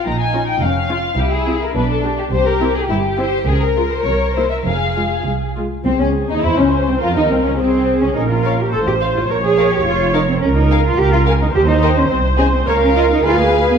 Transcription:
<<
  \new Staff \with { instrumentName = "Violin section" } { \time 2/4 \key f \minor \tempo 4 = 105 bes''16 aes''8 g''16 f''4 | g'16 aes'8 bes'16 b'16 a'8 g'16 | c''16 bes'8 aes'16 g'4 | aes'16 bes'8 c''16 des''8 c''16 e''16 |
f''4 r4 | c'16 des'8 ees'16 e'16 des'8 c'16 | f'16 ees'16 c'16 des'16 c'8. des'16 | r8 f''8 r8 f''8 |
r8 f''8 r8 f''8 | \key bes \dorian r8 aes''8 r8 aes''8 | r8 g''8 r8 aes''8 | f''4 aes''4 | }
  \new Staff \with { instrumentName = "Violin section" } { \time 2/4 \key f \minor << { ees'4 des'8 f'8 | e'4 d'4 | g'4 e'8 c''8 | bes'2 |
aes'4. r8 | c'16 des'8 ees'16 e'16 des'8 c'16 | f'16 ees'16 c'16 des'16 c'8. des'16 | r8 des''8 r8 c''8 |
r8 des''8 r8 des''8 | \key bes \dorian r8 f''8 r8 f''8 | r8 ees''8 r8 ees''8 | des''8 ees''8 f''4 | } \\ { r2 | r2 | r2 | r2 |
r2 | r2 | r2 | r8 bes'8 r8 c''8 |
r8 bes'8 r8 bes'8 | r8 bes'8 r8 bes'8 | r8 bes'8 r8 aes'8 | bes'4 b'4 | } >> }
  \new Staff \with { instrumentName = "Viola section" } { \time 2/4 \key f \minor r8 <des' f'>8 r8 <des' f'>8 | r8 <c' e'>8 r8 <d' g'>8 | r8 <c' e'>8 r8 <c' e'>8 | r8 <aes f'>8 r8 <bes e'>8 |
r8 <aes f'>8 r8 <aes f'>8 | aes'4 c''4 | bes'4 aes'4 | bes'4 c''4 |
des''2 | \key bes \dorian bes'4 bes'4 | c''2 | bes'4 aes'4 | }
  \new Staff \with { instrumentName = "Cello section" } { \time 2/4 \key f \minor bes,4 f,4 | c4 b,4 | c4 g,4 | des4 c4 |
f,4 c,4 | c'16 des'8 ees'16 e'16 des'8 c'16 | f'16 ees'16 c'16 des'16 c'8. des'16 | ees'16 f'8 g'16 a'16 g'8 f'16 |
bes'16 aes'8 g'16 f'8 ees'16 c'16 | \key bes \dorian des'16 ees'8 f'16 g'16 f'8 ees'16 | g'16 ees'8 des'16 c'8 des'16 c'16 | bes16 des'16 f'16 ees'16 f'16 bes8 b16 | }
  \new Staff \with { instrumentName = "Double bass section" } { \clef bass \time 2/4 \key f \minor bes,,4 f,,4 | c,4 b,,4 | c,4 g,,4 | des,4 c,4 |
f,,4 c,4 | c,16 des,8 ees,16 e,16 des,8 c,16 | f,16 ees,16 c,16 des,16 c,8. des,16 | bes,,4 a,,4 |
bes,,4 f,,4 | \key bes \dorian des,4 des,4 | ees,4 c,4 | des,4 d,4 | }
>>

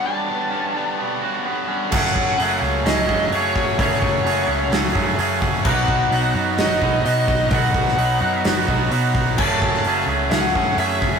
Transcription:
<<
  \new Staff \with { instrumentName = "Lead electric guitar" } { \time 4/4 \key fis \dorian \tempo 4 = 129 a''2. r4 | fis''4. r8 dis''4 cis''4 | cis''2 r2 | fis''4. r8 dis''4 dis''4 |
fis''2 r2 | a''4. r8 fis''4 e''4 | }
  \new Staff \with { instrumentName = "Clean electric guitar" } { \time 4/4 \key fis \dorian <g b cis' fis'>4 cis'8 g8 b8 fis'8 b8 cis'8 | <fis, cis fis a cis' gis'>8 <fis a cis' gis'>8 <fis, cis fis a cis' gis'>8 <fis a cis' gis'>8 <fis a cis' gis'>8 <fis, cis fis a cis' gis'>8 <fis a cis' gis'>8 <fis a cis' gis'>8 | <fis, cis fis a cis' gis'>8 <fis a cis' gis'>8 <fis, cis fis a cis' gis'>8 <fis a cis' gis'>8 <fis a cis' gis'>8 <fis, cis fis a cis' gis'>8 <fis a cis' gis'>8 <fis a cis' gis'>8 | <b, fis b dis' fis'>8 <b dis' fis'>8 <b, fis b dis' fis'>8 <b dis' fis'>8 <fis b dis' fis'>8 <b, fis b dis' fis'>8 <fis b dis' fis'>8 <b dis' fis'>8 |
<b, fis b dis' fis'>8 <b dis' fis'>8 <b, fis b dis' fis'>8 <b dis' fis'>8 <fis b dis' fis'>8 <b, fis b dis' fis'>8 <fis b dis' fis'>8 <b dis' fis'>8 | <fis, cis fis a cis' gis'>8 <fis a cis' gis'>8 <fis, cis fis a cis' gis'>8 <fis a cis' gis'>8 <fis a cis' gis'>8 <fis, cis fis a cis' gis'>8 <fis a cis' gis'>8 <fis a cis' gis'>8 | }
  \new Staff \with { instrumentName = "Overdriven electric guitar" } { \time 4/4 \key fis \dorian <g cis' fis'>8 b8 g8 b8 fis'8 cis'8 fis'8 cis'8 | <fis, cis fis a cis' fis'>4 <fis, cis fis a cis' fis'>8 <fis a cis' fis'>4 <fis a cis' fis'>8 <fis a cis' fis'>4 | <fis, cis fis a cis' fis'>4 <fis, cis fis a cis' fis'>8 <fis a cis' fis'>4 <fis a cis' fis'>8 <fis a cis' fis'>4 | <b, fis b dis' fis'>4 <b, fis b dis' fis'>8 <b dis' fis'>4 <b dis' fis'>8 <fis b dis' fis'>4 |
<b, fis b dis' fis'>4 <b, fis b dis' fis'>8 <b dis' fis'>4 <b dis' fis'>8 <fis b dis' fis'>4 | <fis, cis fis a cis' fis'>4 <fis, cis fis a cis' fis'>8 <fis a cis' fis'>4 <fis a cis' fis'>8 <fis a cis' fis'>4 | }
  \new Staff \with { instrumentName = "Distorted electric guitar" } { \clef bass \time 4/4 \key fis \dorian <g, d g b d'>8 <g, d g b d'>8 <g, d g b d'>8 <g, d g b d'>8 <g, d g b d'>8 <g, d g b d'>8 <g, d g b d'>8 <g, d g b d'>8 | <fis, cis fis a cis' fis'>2 <fis, cis fis a cis' fis'>2 | <fis, cis fis a cis' fis'>2 <fis, cis fis a cis' fis'>2 | <b, fis b dis' fis'>2 <b, fis b dis' fis'>2 |
<b, fis b dis' fis'>2 <b, fis b dis' fis'>2 | <fis, cis fis a cis'>2 <fis, cis fis a cis'>2 | }
  \new Staff \with { instrumentName = "Picked electric bass" } { \clef bass \time 4/4 \key fis \dorian r1 | fis,,8 fis,,8 fis,,8 cis,8 cis,8 fis,,8 fis,8 fis,,8 | fis,,8 fis,,8 fis,,8 cis,8 cis,8 fis,,8 fis,8 fis,,8 | b,,8 b,,8 b,,8 fis,8 fis,,8 b,,8 b,8 b,,8 |
b,,8 b,,8 b,,8 fis,8 fis,,8 b,,8 b,8 b,,8 | fis,,8 fis,,8 fis,,8 cis,8 cis,8 fis,,8 fis,8 fis,,8 | }
  \new DrumStaff \with { instrumentName = "Drums" } \drummode { \time 4/4 r4 r4 r4 r4 | <cymc bd>8 bd8 hho4 <hho sn>8 bd8 hho8 bd8 | <hho bd>8 bd8 hho4 <hho sn>8 bd8 hho8 bd8 | <cymc bd>8 bd8 hho4 <hho sn>8 bd8 hho8 bd8 |
<hho bd>8 bd16 sn16 hho4 <hho sn>8 bd8 hho8 bd8 | <cymc bd>8 bd16 sn16 hho4 <hho sn>8 bd8 hho8 bd8 | }
>>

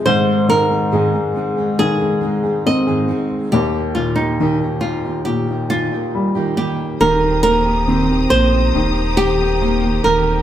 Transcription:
<<
  \new Staff \with { instrumentName = "String section" } { \time 4/4 \key ees \major \tempo 4 = 69 r1 | r1 | <g' c'' bes'' ees'''>1 | }
  \new Staff \with { instrumentName = "Nylon-string guitar" } { \time 4/4 \key ees \major c''8 bes'4 r8 aes'4 ees''8. r16 | g'8 f'16 ees'8. f'8 g'8 f'4 g'8 | bes'8 bes'4 c''4 g'4 bes'8 | }
  \new Staff \with { instrumentName = "Steel-string acoustic guitar" } { \time 4/4 \key ees \major <aes, ees aes c' ees' aes'>8 <aes c' ees' aes'>16 <aes c' ees' aes'>16 <aes, ees aes c' ees' aes'>16 <aes c' ees' aes'>16 <aes c' ees' aes'>16 <aes c' ees' aes'>8 <aes c' ees' aes'>16 <aes c' ees' aes'>16 <aes c' ees' aes'>8 <aes, ees aes c' ees' aes'>16 <aes c' ees' aes'>8 | <ees bes ees' g'>8 <ees bes ees' g'>16 <bes ees' g'>16 <ees bes ees' g'>16 <bes ees' g'>16 <ees bes ees' g'>16 <bes ees' g'>8 <bes ees' g'>16 <ees bes ees' g'>16 <bes ees' g'>8 <ees bes ees' g'>16 <ees bes ees' g'>8 | <ees bes c' g'>8 <ees bes c' g'>16 <bes c' g'>16 <ees bes c' g'>16 <bes c' g'>16 <ees bes c' g'>16 <bes c' g'>8. <ees bes c' g'>16 <bes c' g'>16 <ees bes c' g'>16 <bes c' g'>16 <ees bes c' g'>8 | }
  \new Staff \with { instrumentName = "Upright piano" } { \clef bass \time 4/4 \key ees \major aes,8 ees8 aes4 ees4 c'4 | ees,8 bes,8 ees4 bes,4 g4 | ees8 bes8 c'8 bes8 ees4 bes4 | }
  \new Staff \with { instrumentName = "Sub bass" } { \clef bass \time 4/4 \key ees \major r1 | r1 | ees,,4. bes,,8 ees,,4. ees,,8 | }
>>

